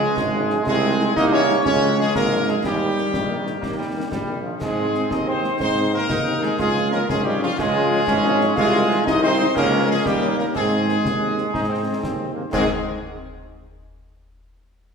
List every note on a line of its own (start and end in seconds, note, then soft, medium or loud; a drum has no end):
0.00 0.07 F3 medium
0.00 0.62 G#3 loud
0.00 0.07 G#3 medium
0.00 0.13 C#4 loud
0.00 0.07 C#4 medium
0.00 0.62 G#4 loud
0.16 0.58 G#1 loud
0.16 0.64 G#3 loud
0.16 concert bass drum medium
0.16 snare loud
0.34 0.40 F3 medium
0.34 0.40 G#3 loud
0.34 0.40 C#4 loud
0.50 0.57 F3 medium
0.50 0.57 G#3 medium
0.50 0.57 C#4 medium
0.50 snare medium
0.66 1.08 C2 loud
0.66 1.12 G#3 loud
0.66 1.16 C4 loud
0.66 1.13 G#4 loud
0.66 concert bass drum medium
0.66 snare medium
0.66 crash soft
0.83 0.89 D#3 medium
0.83 0.89 G#3 medium
0.83 0.89 D#4 medium
0.99 1.06 D#3 medium
0.99 1.05 G#3 medium
0.99 1.05 D#4 medium
0.99 snare medium
1.16 1.57 C2 loud
1.16 1.62 A#3 loud
1.16 1.35 D#4 loud
1.16 1.24 D#5 loud
1.16 concert bass drum medium
1.16 snare medium
1.32 1.39 D#3 loud
1.32 1.39 G#3 loud
1.32 1.65 C#4 loud
1.32 1.39 D#4 loud
1.32 1.63 C#5 loud
1.48 1.55 D#3 medium
1.48 1.54 G#3 medium
1.48 1.55 D#4 loud
1.48 snare medium
1.65 2.07 C#2 loud
1.65 2.64 G#3 loud
1.65 1.96 C#4 loud
1.65 1.96 C#5 loud
1.65 concert bass drum medium
1.65 snare medium
1.82 1.88 F3 medium
1.82 1.88 G#3 medium
1.82 1.88 C#4 medium
1.98 2.04 F3 medium
1.98 2.04 G#3 medium
1.98 2.06 G#3 loud
1.98 2.04 C#4 medium
1.98 2.14 G#4 loud
2.15 2.56 G#1 loud
2.15 2.46 A#3 loud
2.15 2.45 A#4 loud
2.15 concert bass drum loud
2.15 snare medium
2.30 2.37 F3 medium
2.30 2.37 G#3 loud
2.30 2.37 C#4 loud
2.47 2.54 F3 medium
2.47 2.54 G#3 medium
2.47 2.63 G#3 loud
2.47 2.54 C#4 medium
2.47 2.64 G#4 loud
2.47 snare medium
2.63 3.06 D#2 loud
2.63 3.07 G3 medium
2.63 4.09 G3 loud
2.63 4.08 G4 loud
2.63 concert bass drum medium
2.63 snare medium
2.63 crash soft
2.81 2.87 D#3 medium
2.81 2.87 A#3 medium
2.96 3.02 D#3 medium
2.96 3.03 A#3 medium
2.96 snare medium
3.13 3.55 A#1 medium
3.13 3.60 D#3 loud
3.13 concert bass drum medium
3.13 snare medium
3.30 3.36 D#3 medium
3.30 3.36 A#3 medium
3.46 3.53 D#3 medium
3.46 3.53 A#3 medium
3.46 snare medium
3.61 4.04 D#2 medium
3.61 3.77 A#3 loud
3.61 concert bass drum medium
3.61 snare medium
3.77 3.86 D#3 medium
3.77 4.09 G3 loud
3.77 3.86 A#3 medium
3.95 4.02 D#3 medium
3.95 4.02 A#3 medium
4.11 4.54 A#1 medium
4.11 4.42 G3 loud
4.11 concert bass drum medium
4.11 snare medium
4.28 4.34 D#3 medium
4.28 4.34 A#3 medium
4.43 4.50 D#3 medium
4.43 4.59 F3 medium
4.43 4.50 A#3 medium
4.60 5.03 G#2 loud
4.60 5.07 G#3 loud
4.60 5.56 C4 loud
4.60 5.07 G#4 loud
4.60 concert bass drum medium
4.60 snare medium
4.60 crash medium
4.77 4.83 D#3 medium
4.77 4.84 G#3 medium
4.77 4.84 C4 medium
4.94 5.00 D#3 medium
4.94 5.00 G#3 medium
4.94 5.00 C4 medium
4.94 snare medium
5.11 5.48 D#2 loud
5.11 5.19 D#4 loud
5.11 5.27 D#5 loud
5.11 concert bass drum medium
5.11 snare medium
5.27 5.33 D#3 medium
5.27 5.33 G#3 medium
5.27 5.33 C4 medium
5.27 5.58 C4 loud
5.27 5.58 C5 loud
5.43 5.49 D#3 medium
5.43 5.49 G#3 medium
5.43 5.49 C4 medium
5.43 snare soft
5.60 6.02 G#2 loud
5.60 5.96 C4 loud
5.60 5.95 D#4 loud
5.60 5.91 C5 loud
5.60 concert bass drum medium
5.60 snare medium
5.77 5.83 D#3 medium
5.77 5.83 G#3 medium
5.77 5.83 C4 medium
5.93 5.99 D#3 medium
5.93 5.99 G#3 medium
5.93 6.46 A#3 loud
5.93 5.99 C4 medium
5.93 6.40 A#4 loud
6.09 6.51 D#2 medium
6.09 6.55 D#4 loud
6.09 concert bass drum medium
6.09 snare medium
6.26 6.32 D#3 medium
6.26 6.32 G#3 medium
6.26 6.32 C4 medium
6.42 6.48 D#3 medium
6.42 6.49 G#3 medium
6.42 6.59 G#3 loud
6.42 6.49 C4 medium
6.42 6.58 G#4 loud
6.42 snare medium
6.59 7.01 C#2 loud
6.59 6.94 G#3 loud
6.59 7.05 F4 loud
6.59 6.90 G#4 loud
6.59 concert bass drum medium
6.59 snare medium
6.59 crash soft
6.76 6.82 F3 medium
6.76 6.82 G#3 medium
6.76 6.82 C#4 medium
6.91 6.97 F3 medium
6.91 6.98 G#3 medium
6.91 7.08 A#3 loud
6.91 6.98 C#4 medium
6.91 7.07 A#4 loud
6.91 snare medium
7.09 7.50 G#1 loud
7.09 7.24 G#3 loud
7.09 7.58 C#4 loud
7.09 7.24 G#4 loud
7.09 concert bass drum loud
7.09 snare medium
7.24 7.31 F3 medium
7.24 7.41 G3 loud
7.24 7.30 G#3 loud
7.24 7.30 C#4 medium
7.24 7.41 G4 loud
7.41 7.48 F3 medium
7.41 7.50 F3 loud
7.41 7.47 G#3 medium
7.41 7.47 C#4 medium
7.41 7.57 F4 loud
7.41 snare medium
7.57 7.99 C#2 loud
7.57 8.54 G#3 loud
7.57 8.07 F4 loud
7.57 8.55 G#4 loud
7.57 concert bass drum loud
7.57 snare medium
7.75 7.81 F3 medium
7.75 7.81 G#3 medium
7.75 7.81 C#4 medium
7.91 7.97 F3 medium
7.91 7.97 G#3 medium
7.91 7.97 C#4 medium
8.07 8.49 G#1 loud
8.07 8.54 C#4 loud
8.07 concert bass drum loud
8.07 snare medium
8.24 8.30 F3 loud
8.24 8.30 G#3 loud
8.24 8.30 C#4 loud
8.40 8.46 F3 loud
8.40 8.46 G#3 medium
8.40 8.46 C#4 medium
8.40 snare medium
8.56 8.98 C2 loud
8.56 9.08 G#3 loud
8.56 9.02 F4 loud
8.56 9.03 G#4 loud
8.56 concert bass drum loud
8.56 snare medium
8.56 crash soft
8.73 8.79 D#3 medium
8.73 8.79 G#3 medium
8.73 8.79 D#4 medium
8.90 8.96 D#3 loud
8.90 8.96 G#3 loud
8.90 8.96 D#4 medium
8.90 snare medium
9.06 9.48 C2 loud
9.06 9.23 D#4 loud
9.06 9.56 D#4 loud
9.06 9.21 D#5 loud
9.06 concert bass drum loud
9.06 snare loud
9.22 9.29 D#3 loud
9.22 9.29 G#3 loud
9.22 9.54 C4 loud
9.22 9.29 D#4 loud
9.22 9.53 C5 loud
9.39 9.45 D#3 loud
9.39 9.45 G#3 loud
9.39 9.45 D#4 loud
9.39 snare medium
9.55 9.97 C#2 loud
9.55 9.87 A#3 loud
9.55 10.01 C#4 loud
9.55 9.86 A#4 loud
9.55 concert bass drum medium
9.55 snare medium
9.71 9.78 F3 medium
9.71 9.78 G#3 medium
9.71 9.78 C#4 medium
9.88 9.94 F3 medium
9.88 9.96 G#3 loud
9.88 9.95 G#3 medium
9.88 9.94 C#4 medium
9.88 10.04 G#4 loud
10.04 10.46 D#2 loud
10.04 10.35 G3 loud
10.04 10.51 A#3 loud
10.04 10.38 G4 loud
10.04 concert bass drum loud
10.04 snare loud
10.21 10.27 D#3 loud
10.21 10.27 A#3 loud
10.21 10.27 C#4 loud
10.37 10.44 D#3 medium
10.37 10.45 A#3 loud
10.37 10.44 A#3 medium
10.37 10.44 C#4 medium
10.37 10.45 A#4 loud
10.37 snare medium
10.54 10.96 G#2 loud
10.54 12.32 G#3 loud
10.54 10.98 C4 loud
10.54 12.32 G#4 loud
10.54 concert bass drum medium
10.54 snare medium
10.54 crash soft
10.70 10.76 D#3 medium
10.70 10.76 G#3 medium
10.70 10.76 C4 medium
10.87 10.93 D#3 medium
10.87 10.93 G#3 medium
10.87 10.93 C4 medium
10.87 snare medium
11.04 11.45 D#2 medium
11.04 11.51 G#3 loud
11.04 concert bass drum medium
11.04 snare medium
11.20 11.26 D#3 medium
11.20 11.27 G#3 medium
11.20 11.26 C4 medium
11.37 11.43 D#3 medium
11.37 11.43 G#3 medium
11.37 11.43 C4 medium
11.37 snare soft
11.54 11.95 G#2 loud
11.54 11.69 D#4 loud
11.54 concert bass drum medium
11.54 snare medium
11.69 11.76 D#3 medium
11.69 11.76 G#3 medium
11.69 12.00 C4 loud
11.69 11.76 C4 medium
11.86 11.92 D#3 medium
11.86 11.93 G#3 medium
11.86 11.93 C4 medium
12.03 12.45 D#2 medium
12.03 12.33 C4 loud
12.03 concert bass drum medium
12.03 snare medium
12.20 12.26 D#3 medium
12.20 12.26 G#3 medium
12.20 12.26 C4 medium
12.34 12.42 D#3 medium
12.34 12.42 G#3 medium
12.34 12.42 A#3 medium
12.34 12.42 C4 medium
12.51 12.66 G#2 loud
12.51 12.66 D#3 loud
12.51 12.66 G#3 loud
12.51 12.67 G#3 loud
12.51 12.65 C4 loud
12.51 12.66 C4 loud
12.51 12.66 G#4 loud
12.51 concert bass drum loud
12.51 snare loud
12.51 crash medium